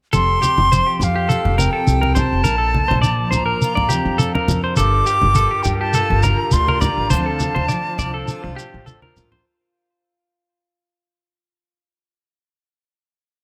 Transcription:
0.13 F1 F2 G4 A4 C6, shekere
0.42 G4, high conga, shekere
0.58 F1, high conga
0.72 F3 C5, shekere
0.86 G4
1.00 F2 F5, low conga, shekere
1.16 G4
1.29 G4 A4, shekere
1.45 F1, low conga
1.58 C3 A#4 G5, high conga, shekere
1.73 A4
1.87 C2 G4, shekere
2.01 A#4, high conga
2.15 G4 C5, high conga, low conga, shekere
2.19 A5
2.33 F1
2.44 A#1 A#2 D4 A#4, shekere
2.58 A4
2.74 high conga
2.88 A#1 C5, high conga
3.02 F3 D5, shekere
3.31 A1 C5 A#5, low conga, shekere
3.46 A#4
3.62 F4, shekere
3.75 A1 D5, low conga
3.89 F2 G4, high conga, shekere
4.05 F2
4.18 A4, shekere
4.23 D4
4.35 A#4, high conga
4.48 F2, muted steel-string acoustic guitar stroke, high conga, low conga, shekere
4.64 C5
4.76 G1 G2 D4 F4 G4 A4 A#4 D6, shekere
5.06 G4, shekere
5.22 G1, high conga
5.35 G3 A4, shekere
5.51 G4
5.63 G2 G5, low conga, shekere
5.79 G4 A5
5.94 F4 A4, shekere
6.10 G1, low conga
6.23 D3 A#4 A#5, high conga, shekere
6.51 D2 D4 C6, shekere
6.68 A#4, high conga
6.81 F4 D5 A#5, high conga, low conga, shekere
6.98 A1
7.10 D2 D3 F3 D4 C5 A5, shekere
7.15 C4 D4 F4
7.26 A4
7.40 high conga, shekere
7.55 D2 C5, high conga
7.68 F3 D5, shekere
7.99 C2 D5, low conga, shekere
8.14 A4
8.28 F4, shekere
8.44 C2, muted clean electric guitar stroke
8.56 A2 G4, shekere
8.74 A1
8.86 D4 A4, high conga, shekere
9.02 A#4, high conga
9.17 A1 F4, low conga, shekere
9.32 C5, low conga

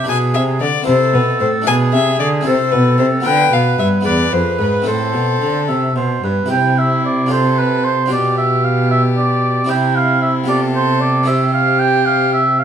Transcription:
0.04 D4 E4 B4
0.08 B2 G#4 G#5
0.34 C3 E5
0.60 D3 D5
0.82 C4 E4 A4
0.86 C3 A4 C5
1.14 B2 B4
1.40 A2 C5
1.62 D4 E4 B4
1.66 B2 G#4 G#5
1.93 C3 E5
2.20 D3 D5
2.41 C4 E4 A4
2.46 C3 A4 C5
2.71 B2 B4
2.98 C3 C5
3.20 B3 F4 B4
3.25 D3 B4 G5
3.52 B2 F5
3.79 G2 E5
4.01 B3 E4 G#4
4.05 E2 B4 D5
4.32 F2 C5
4.59 G#2 B4
4.82 C4 E4 A4
4.86 A2 A4 C5
5.14 B2
5.41 D3
5.68 C3 E5
5.96 B2 C5
6.23 G2 B4
6.46 C3 E4 G4
6.50 C3 G5
6.78 E5
7.05 D5
7.26 D4 F4 A4
7.31 C5
7.59 B4
7.85 C5
8.06 D4 F4 G4
8.10 B2 G4 D5
8.37 E5
8.64 F5
8.91 E5
9.17 D5
9.64 C4 E4 G4
9.69 C3 E4 G5
9.95 F5
10.22 E5
10.44 B3 F4 G4
10.48 A4 D5
10.75 C5
11.00 D5
11.23 C4 E4 G4 E5
11.53 F5
11.79 G5
12.06 F5
12.33 E5
12.59 F5

